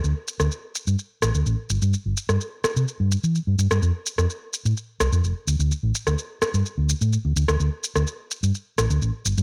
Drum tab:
SH |x-xxx-xxx-xxx-xx|x-xxx-xxx-xxx-xx|x-xxx-xxx-xxx-xx|x-xxx-xxx-xxx-xx|
SD |---r------r-----|---r--r--------r|---r------r-----|---r--r--------r|

SH |x-xxx-xxx-xxx-xx|
SD |---r------r-----|